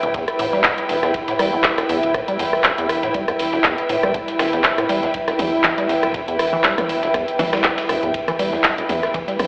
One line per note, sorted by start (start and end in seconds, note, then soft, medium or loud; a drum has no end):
0.00 0.21 D1 loud
0.00 0.09 E1 medium
0.00 9.47 E4 medium
0.00 9.47 B4 medium
0.00 9.47 E5 medium
0.00 9.47 G5 medium
0.00 closed hi-hat soft
0.14 0.26 E2 medium
0.14 kick loud
0.14 closed hi-hat medium
0.14 ride medium
0.28 cross-stick medium
0.28 closed hi-hat medium
0.39 0.59 E1 medium
0.39 0.47 A2 medium
0.39 open hi-hat loud
0.39 ride medium
0.53 0.62 G3 medium
0.53 snare soft
0.64 0.69 E2 medium
0.64 kick loud
0.64 cross-stick medium
0.64 snare loud
0.64 clap loud
0.64 closed hi-hat medium
0.64 ride medium
0.78 closed hi-hat soft
0.89 0.97 E1 medium
0.89 1.09 E1 medium
0.89 snare medium
0.89 open hi-hat medium
0.89 ride medium
1.03 1.12 E2 medium
1.03 cross-stick medium
1.03 snare soft
1.03 closed hi-hat soft
1.14 kick loud
1.14 closed hi-hat medium
1.14 ride medium
1.28 1.34 A2 medium
1.28 snare medium
1.28 closed hi-hat medium
1.39 1.59 E1 medium
1.39 1.51 G3 medium
1.39 cross-stick medium
1.39 open hi-hat loud
1.39 ride medium
1.53 1.57 E2 medium
1.64 kick loud
1.64 snare loud
1.64 clap loud
1.64 closed hi-hat medium
1.64 ride medium
1.78 1.84 E1 medium
1.78 cross-stick medium
1.78 snare soft
1.78 closed hi-hat soft
1.89 2.00 E1 medium
1.89 2.01 E2 medium
1.89 open hi-hat medium
1.89 ride medium
2.03 2.21 D1 loud
2.03 closed hi-hat soft
2.03 ride soft
2.14 2.22 A2 medium
2.14 kick loud
2.14 cross-stick medium
2.14 closed hi-hat medium
2.14 ride medium
2.28 2.37 G3 medium
2.28 closed hi-hat medium
2.39 2.59 E1 loud
2.39 2.44 E2 medium
2.39 open hi-hat loud
2.39 ride medium
2.53 cross-stick medium
2.64 2.72 E1 medium
2.64 kick loud
2.64 snare loud
2.64 clap loud
2.64 closed hi-hat medium
2.64 ride medium
2.78 2.88 E2 medium
2.78 closed hi-hat soft
2.89 3.09 E1 medium
2.89 cross-stick medium
2.89 open hi-hat medium
2.89 ride medium
3.03 3.09 A2 medium
3.03 snare soft
3.03 closed hi-hat soft
3.14 3.26 G3 medium
3.14 kick loud
3.14 closed hi-hat medium
3.14 ride medium
3.28 3.32 E2 medium
3.28 cross-stick medium
3.28 closed hi-hat soft
3.39 3.59 E1 loud
3.39 open hi-hat loud
3.39 ride medium
3.53 3.59 E1 medium
3.53 snare soft
3.64 3.76 E2 medium
3.64 kick loud
3.64 cross-stick medium
3.64 snare loud
3.64 clap loud
3.64 closed hi-hat medium
3.64 ride medium
3.78 closed hi-hat soft
3.89 4.00 E1 medium
3.89 3.97 A2 medium
3.89 open hi-hat medium
3.89 ride medium
4.03 4.21 D1 loud
4.03 4.13 G3 medium
4.03 cross-stick medium
4.03 closed hi-hat soft
4.14 4.19 E2 medium
4.14 kick loud
4.14 closed hi-hat medium
4.14 ride medium
4.28 snare soft
4.28 closed hi-hat soft
4.39 4.59 E1 loud
4.39 4.47 E1 medium
4.39 cross-stick medium
4.39 snare loud
4.39 open hi-hat loud
4.39 ride medium
4.53 4.62 E2 medium
4.53 snare soft
4.53 closed hi-hat soft
4.64 kick loud
4.64 snare loud
4.64 clap loud
4.64 closed hi-hat medium
4.64 ride medium
4.78 4.84 A2 medium
4.78 cross-stick medium
4.78 closed hi-hat soft
4.89 5.09 E1 medium
4.89 5.01 G3 medium
4.89 snare medium
4.89 open hi-hat medium
4.89 ride medium
5.03 5.07 E2 medium
5.03 snare soft
5.03 closed hi-hat soft
5.14 kick loud
5.14 closed hi-hat medium
5.14 ride medium
5.28 5.34 E1 medium
5.28 cross-stick medium
5.28 snare medium
5.28 closed hi-hat soft
5.39 5.59 E1 loud
5.39 5.51 E2 medium
5.39 open hi-hat loud
5.39 mid tom medium
5.39 ride medium
5.64 5.69 E3 loud
5.64 kick loud
5.64 cross-stick medium
5.64 snare loud
5.64 clap loud
5.64 closed hi-hat medium
5.64 ride medium
5.78 5.87 G3 medium
5.78 snare soft
5.78 closed hi-hat soft
5.89 6.00 E1 medium
5.89 5.94 E2 medium
5.89 open hi-hat medium
5.89 ride medium
6.03 6.21 D1 loud
6.03 cross-stick medium
6.03 closed hi-hat soft
6.03 ride soft
6.14 6.22 E1 medium
6.14 kick loud
6.14 closed hi-hat medium
6.14 ride medium
6.28 6.37 E2 medium
6.28 closed hi-hat soft
6.39 6.59 E1 loud
6.39 cross-stick medium
6.39 open hi-hat loud
6.39 ride medium
6.53 6.57 E3 loud
6.64 6.76 G3 medium
6.64 kick loud
6.64 snare loud
6.64 clap loud
6.64 closed hi-hat medium
6.64 ride medium
6.78 6.82 E2 medium
6.78 cross-stick medium
6.78 closed hi-hat soft
6.78 mid tom medium
6.89 7.09 E1 medium
6.89 open hi-hat medium
6.89 ride medium
7.03 7.09 E1 medium
7.03 snare medium
7.03 closed hi-hat soft
7.14 7.26 E2 medium
7.14 kick loud
7.14 cross-stick medium
7.14 closed hi-hat medium
7.14 ride medium
7.28 closed hi-hat soft
7.39 7.59 E1 loud
7.39 7.44 E3 loud
7.39 snare loud
7.39 open hi-hat loud
7.39 mid tom medium
7.39 ride medium
7.53 7.62 G3 medium
7.53 cross-stick medium
7.53 snare loud
7.53 ride medium
7.64 7.69 E2 medium
7.64 kick loud
7.64 snare loud
7.64 clap loud
7.64 closed hi-hat medium
7.64 ride medium
7.78 snare loud
7.78 closed hi-hat soft
7.78 ride medium
7.89 7.97 E1 medium
7.89 8.00 E1 medium
7.89 cross-stick medium
7.89 open hi-hat medium
7.89 ride medium
8.03 8.21 D1 loud
8.03 8.12 E2 medium
8.03 closed hi-hat soft
8.14 kick loud
8.14 closed hi-hat medium
8.14 ride medium
8.28 8.32 E3 loud
8.28 cross-stick medium
8.28 closed hi-hat medium
8.39 8.59 E1 medium
8.39 8.51 G3 medium
8.39 open hi-hat loud
8.39 ride medium
8.53 8.57 E2 medium
8.53 snare soft
8.64 kick loud
8.64 cross-stick medium
8.64 snare loud
8.64 clap loud
8.64 closed hi-hat medium
8.64 ride medium
8.78 8.84 E1 medium
8.78 closed hi-hat medium
8.89 9.09 E1 loud
8.89 9.01 E2 medium
8.89 snare medium
8.89 open hi-hat medium
8.89 mid tom medium
8.89 ride medium
9.03 cross-stick medium
9.03 snare soft
9.03 closed hi-hat soft
9.14 9.19 E3 loud
9.14 kick loud
9.14 closed hi-hat medium
9.14 ride medium
9.28 9.37 G3 medium
9.28 snare soft
9.28 closed hi-hat medium
9.39 9.47 E1 loud
9.39 9.44 E2 medium
9.39 cross-stick medium
9.39 open hi-hat loud
9.39 mid tom medium
9.39 ride medium